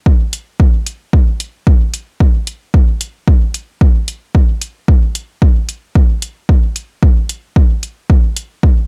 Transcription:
0.06 kick loud
0.33 closed hi-hat medium
0.60 kick loud
0.86 closed hi-hat medium
1.13 kick loud
1.40 closed hi-hat medium
1.67 kick loud
1.94 closed hi-hat medium
2.20 kick loud
2.47 closed hi-hat medium
2.74 kick loud
3.01 closed hi-hat medium
3.28 kick loud
3.54 closed hi-hat medium
3.81 kick loud
4.08 closed hi-hat medium
4.35 kick loud
4.62 closed hi-hat medium
4.88 kick loud
5.15 closed hi-hat medium
5.42 kick loud
5.69 closed hi-hat medium
5.95 kick loud
6.22 closed hi-hat medium
6.49 kick loud
6.76 closed hi-hat medium
7.03 kick loud
7.29 closed hi-hat medium
7.56 kick loud
7.83 closed hi-hat medium
8.10 kick loud
8.36 closed hi-hat medium
8.63 kick medium

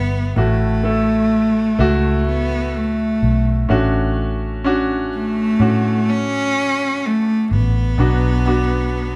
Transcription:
0.00 0.33 G1 medium
0.00 0.38 B3 loud
0.36 1.75 A1 medium
0.36 1.75 A2 medium
0.36 2.27 A3 medium
0.36 0.82 A3 medium
0.36 0.82 E4 medium
0.36 0.82 F#4 medium
0.83 1.74 A3 medium
0.83 1.75 E4 medium
0.83 1.75 A4 medium
1.79 3.18 C#2 medium
1.79 3.60 A3 medium
1.79 3.60 E4 medium
1.79 3.61 F#4 medium
2.28 2.77 B3 medium
2.76 3.70 A3 medium
3.23 3.67 B1 medium
3.69 5.56 A1 medium
3.69 5.09 A2 medium
3.69 5.08 A3 medium
3.69 4.60 C#4 medium
3.69 4.60 D4 medium
3.69 4.61 F#4 medium
4.64 5.55 C#4 medium
4.64 5.56 D4 medium
4.64 5.56 F#4 medium
5.14 6.10 A3 medium
5.60 7.53 A2 medium
5.60 7.41 D3 medium
5.60 7.41 C#4 medium
5.60 7.42 F#4 medium
6.09 7.07 C#4 loud
7.06 7.54 A3 medium
7.51 7.95 A1 medium
7.51 9.16 B3 medium
7.98 9.16 B1 medium
7.98 9.16 B2 medium
7.98 9.16 F#3 medium
7.98 8.43 B3 medium
7.98 8.44 D4 medium
7.98 8.44 F#4 medium
8.46 9.16 B3 medium
8.46 9.16 D4 medium
8.46 9.16 F#4 medium

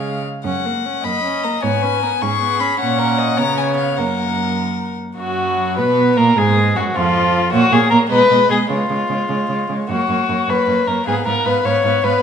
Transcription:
0.00 0.23 C#3 soft
0.00 0.23 G#3 soft
0.00 0.15 G#4 soft
0.00 0.23 F5 soft
0.44 0.94 F#2 medium
0.44 0.67 C#4 soft
0.44 1.05 F#5 medium
0.65 0.87 A#3 soft
0.85 1.06 C#4 soft
1.04 1.54 F#2 soft
1.04 1.23 A#3 soft
1.04 1.64 D#5 medium
1.04 1.45 B5 medium
1.24 1.46 C#4 soft
1.44 1.63 A#3 soft
1.44 1.63 A#5 medium
1.62 2.12 G#2 medium
1.62 1.85 B3 soft
1.62 1.84 C#5 soft
1.62 2.23 G#5 medium
1.82 2.04 C#4 soft
1.82 2.02 B4 soft
2.03 2.24 B3 soft
2.03 2.10 A#4 soft
2.21 2.71 G#2 medium
2.21 2.41 C#4 soft
2.21 2.78 G#4 soft
2.21 2.62 C#6 medium
2.41 2.62 B3 soft
2.60 2.80 C#4 soft
2.60 2.79 B5 medium
2.79 3.40 A#2 soft
2.79 3.40 C#4 soft
2.79 3.01 C#5 medium
2.79 3.40 F#5 medium
2.99 3.20 A#4 medium
3.18 3.39 D#5 soft
3.37 4.00 C#3 medium
3.37 4.00 B3 soft
3.37 4.00 C#5 medium
3.37 3.59 A#5 medium
3.58 3.76 G#5 medium
3.77 3.98 F5 medium
3.97 4.98 F#2 soft
3.97 4.98 A#3 soft
3.97 4.88 A#4 soft
3.97 4.97 F#5 medium
5.17 5.79 F#2 medium
5.17 5.80 F#3 soft
5.17 5.78 F#4 medium
5.17 5.73 F#4 medium
5.77 6.16 B2 medium
5.77 6.18 B3 medium
5.77 6.15 B4 medium
5.77 6.19 B4 medium
6.16 6.36 A#2 medium
6.16 6.37 A#3 medium
6.16 6.37 A#4 medium
6.16 6.39 A#4 medium
6.36 6.75 G#2 medium
6.36 6.77 G#3 medium
6.36 6.75 G#4 medium
6.36 6.78 G#4 medium
6.75 6.84 F#2 medium
6.75 6.95 F#3 medium
6.75 6.84 F#4 medium
6.75 6.97 F#4 medium
6.95 7.52 F2 medium
6.95 7.52 F3 medium
6.95 7.52 F4 medium
7.53 7.61 A#2 medium
7.53 7.71 A#3 medium
7.53 7.74 F#4 medium
7.53 7.72 C#5 medium
7.72 7.80 A#2 medium
7.72 7.91 A#3 soft
7.72 7.90 G#4 medium
7.72 7.91 C#5 soft
7.91 7.99 A#2 medium
7.91 8.11 A#3 soft
7.91 7.99 A#4 medium
7.91 8.09 C#5 soft
8.09 8.19 B2 medium
8.09 8.30 G#3 medium
8.09 8.49 B4 medium
8.09 8.29 D#5 medium
8.29 8.39 B2 soft
8.29 8.50 G#3 soft
8.29 8.49 D#5 soft
8.49 8.57 B2 soft
8.49 8.70 G#3 soft
8.49 8.58 G#4 medium
8.49 8.69 D#5 soft
8.70 8.78 C#3 soft
8.70 8.89 G#3 soft
8.70 9.68 F4 medium
8.70 8.89 C#5 soft
8.89 8.98 C#3 soft
8.89 9.09 G#3 soft
8.89 9.09 C#5 soft
9.09 9.17 C#3 soft
9.09 9.29 G#3 soft
9.09 9.29 C#5 soft
9.29 9.37 C#3 soft
9.29 9.49 G#3 soft
9.29 9.49 C#5 soft
9.49 9.57 C#3 soft
9.49 9.69 G#3 soft
9.49 9.69 C#5 soft
9.69 9.77 C#3 soft
9.69 9.89 G#3 soft
9.69 9.89 C#5 soft
9.89 9.97 F#2 medium
9.89 10.08 A#3 soft
9.89 10.51 F#4 medium
9.89 10.09 C#5 soft
10.09 10.17 F#2 soft
10.09 10.28 A#3 soft
10.09 10.28 C#5 soft
10.29 10.37 F#2 soft
10.29 10.48 A#3 soft
10.29 10.47 C#5 soft
10.48 10.56 F#2 soft
10.48 10.68 A#3 soft
10.48 10.89 B4 medium
10.48 10.67 C#5 soft
10.67 10.75 F#2 soft
10.67 10.88 A#3 soft
10.67 10.87 C#5 soft
10.87 10.95 F#2 soft
10.87 11.07 A#3 soft
10.87 11.06 A#4 medium
10.87 11.06 C#5 soft
11.06 11.15 G#2 medium
11.06 11.26 B3 soft
11.06 11.15 G#4 medium
11.06 11.26 F5 soft
11.26 11.34 G#2 soft
11.26 11.45 B3 soft
11.26 11.47 A#4 medium
11.26 11.45 F5 soft
11.45 11.53 G#2 soft
11.45 11.65 B3 soft
11.45 11.67 B4 medium
11.45 11.64 F5 soft
11.64 11.72 G#2 medium
11.64 11.85 B3 soft
11.64 12.05 C#5 medium
11.64 11.84 F5 soft
11.84 11.92 G#2 medium
11.84 12.04 B3 soft
11.84 12.04 F5 soft
12.04 12.12 G#2 medium
12.04 12.22 B3 soft
12.04 12.22 B4 medium
12.04 12.22 F5 soft

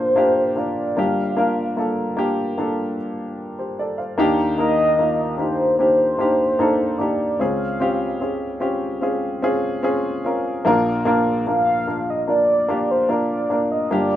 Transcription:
0.00 0.93 A#1 medium
0.00 0.93 A#2 medium
0.00 0.16 A#3 medium
0.00 0.17 D4 medium
0.00 0.17 F4 medium
0.00 0.18 G4 medium
0.00 0.99 A4 medium
0.00 0.61 C5 medium
0.00 1.00 C5 medium
0.16 0.54 A#3 medium
0.16 0.55 D4 medium
0.16 0.55 F4 medium
0.16 0.56 G4 medium
0.56 0.95 A#3 medium
0.56 0.95 D4 soft
0.56 0.95 F4 medium
0.56 0.96 A#4 medium
0.56 1.01 D5 medium
0.97 4.15 G1 soft
0.97 4.15 G2 soft
0.97 1.35 A#3 medium
0.97 1.36 D4 medium
0.97 1.36 F4 medium
0.97 1.36 G4 medium
0.97 1.79 F5 loud
1.37 1.75 A#3 medium
1.37 1.76 D4 medium
1.37 1.76 F4 medium
1.37 1.76 A#4 medium
1.77 2.15 A#3 medium
1.77 2.16 D4 medium
1.77 2.16 F4 medium
1.77 2.16 A4 medium
2.17 2.55 A#3 medium
2.17 2.56 D4 medium
2.17 2.56 F4 medium
2.17 2.56 G4 medium
2.58 2.96 A#3 medium
2.58 2.96 D4 medium
2.58 2.97 F4 medium
2.58 2.97 A4 medium
3.59 3.78 G4 soft
3.59 3.78 C5 soft
3.79 3.98 A4 soft
3.79 3.98 D5 medium
3.98 4.37 C5 soft
3.98 4.37 F5 medium
4.18 7.36 D#2 medium
4.18 7.36 D#3 medium
4.18 4.56 A#3 medium
4.18 4.57 D4 medium
4.18 4.57 D#4 medium
4.18 4.58 G4 loud
4.58 4.97 A#3 medium
4.58 4.97 D#4 medium
4.58 4.98 A#4 medium
4.58 5.35 D#5 medium
4.99 5.36 A#3 medium
4.99 5.37 D#4 medium
4.99 5.38 F4 medium
5.38 5.76 A#3 medium
5.38 5.77 D4 medium
5.38 5.77 D#4 medium
5.38 5.78 G4 medium
5.38 5.76 C5 medium
5.78 6.17 A#3 medium
5.78 6.18 D4 medium
5.78 6.18 D#4 soft
5.78 6.18 G4 medium
5.78 7.00 C5 loud
6.19 6.57 A#3 medium
6.19 6.58 D4 medium
6.19 6.58 D#4 medium
6.19 6.58 G4 medium
6.59 6.98 A#3 medium
6.59 6.98 D4 medium
6.59 6.98 D#4 medium
6.59 6.99 A4 medium
6.98 7.38 A#3 medium
6.98 7.38 D4 medium
6.98 7.39 D#4 medium
6.98 7.39 G4 medium
6.98 7.41 D5 medium
7.39 10.63 C#2 medium
7.39 10.63 C#3 soft
7.39 7.78 C4 medium
7.39 7.79 C#4 medium
7.39 7.79 F4 medium
7.39 7.79 G#4 medium
7.39 8.21 F5 loud
7.80 8.18 C4 medium
7.80 8.19 C#4 medium
7.80 8.19 F4 medium
7.80 8.20 G4 medium
8.20 8.59 C4 medium
8.20 8.59 C#4 medium
8.20 8.59 F4 soft
8.20 8.60 G#4 medium
8.60 9.00 C4 medium
8.60 9.00 C#4 medium
8.60 9.00 F4 medium
8.60 9.01 G4 medium
9.01 9.41 C4 medium
9.01 9.41 C#4 medium
9.01 9.41 F4 medium
9.01 9.42 G#4 medium
9.42 9.81 C4 medium
9.42 9.82 C#4 medium
9.42 9.82 F4 medium
9.42 9.83 G#4 medium
9.83 10.23 C4 medium
9.83 10.23 C#4 medium
9.83 10.23 F4 medium
9.83 10.24 G#4 medium
10.24 10.64 C4 medium
10.24 10.64 C#4 medium
10.24 10.64 F4 medium
10.24 10.65 A#4 medium
10.65 13.86 A#1 medium
10.65 13.86 A#2 medium
10.65 11.04 A#3 medium
10.65 11.05 D4 medium
10.65 11.05 F4 medium
10.65 11.05 A#4 loud
11.05 11.45 A#3 medium
11.05 11.45 D4 medium
11.05 11.46 F4 medium
11.05 11.46 A#4 medium
11.47 11.86 A#3 medium
11.47 11.86 D4 soft
11.47 11.86 F4 medium
11.47 11.87 A#4 medium
11.47 12.12 F5 loud
11.87 12.26 A#3 soft
11.87 12.27 D4 medium
11.87 12.27 F4 soft
11.87 12.27 A#4 medium
12.10 12.29 D#5 loud
12.27 12.67 A#3 medium
12.27 12.67 D4 medium
12.27 12.67 F4 medium
12.27 12.67 A#4 medium
12.27 12.92 D5 medium
12.68 13.07 A#3 medium
12.68 13.08 D4 medium
12.68 13.08 F4 medium
12.68 13.08 G4 medium
12.91 13.11 C5 medium
13.09 13.48 A#3 medium
13.09 13.48 D4 medium
13.09 13.48 F4 medium
13.09 13.49 A#4 medium
13.09 13.71 D5 medium
13.50 13.89 A#3 medium
13.50 13.89 D4 medium
13.50 13.89 F4 medium
13.50 13.90 A#4 medium
13.72 13.90 D#5 medium
13.91 14.16 G1 soft
13.91 14.16 G2 soft
13.91 14.16 A#3 medium
13.91 14.16 D4 medium
13.91 14.16 F4 medium
13.91 14.16 G4 medium
13.91 14.16 D5 loud

